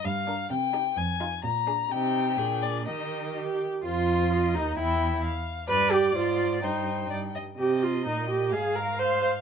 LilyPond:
<<
  \new Staff \with { instrumentName = "Violin" } { \time 2/4 \key ees \major \tempo 4 = 128 f''4 g''4 | aes''4 bes''4 | g''4. d''8 | ees''4 r4 |
\key c \minor c''4 ees''4 | g''4 f''4 | d''4 c''4 | g''4. r8 |
r4 ees''4 | f''2 | }
  \new Staff \with { instrumentName = "Violin" } { \time 2/4 \key ees \major r8 bes'8 r8 g'8 | r8 f'8 r8 aes'8 | g'4 aes'4 | g'4. r8 |
\key c \minor f'4. ees'8 | e'4 r4 | d''2 | c''4 d''8 ees''8 |
ees''2 | f''2 | }
  \new Staff \with { instrumentName = "Viola" } { \time 2/4 \key ees \major r8 d'8 r8 ees'8 | r8 ees'8 r8 d'8 | ees'4 d'4 | ees'4 g'4 |
\key c \minor f'4. ees'8 | e'4 r4 | b'8 g'8 f'4 | ees'4 r4 |
g'8 f'8 ees'8 g'8 | aes'8 bes'8 c''8 c''8 | }
  \new Staff \with { instrumentName = "Cello" } { \clef bass \time 2/4 \key ees \major g,4 c4 | f,4 bes,4 | c4 bes,4 | ees4. r8 |
\key c \minor f,4. ees,8 | e,4 r4 | g,4 aes,4 | g,4 g,8 r8 |
c4 bes,4 | aes,2 | }
>>